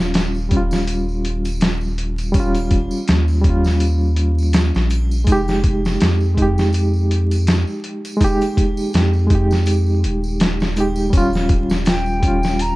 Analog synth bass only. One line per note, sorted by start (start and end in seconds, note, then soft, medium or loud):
0.00 2.88 D#1 loud
3.09 4.71 D#2 medium
4.75 5.29 A#1 medium
5.27 5.98 F1 medium
6.02 7.64 F2 medium
8.94 10.05 F2 medium
10.04 11.10 D#1 medium
11.13 12.76 D#1 medium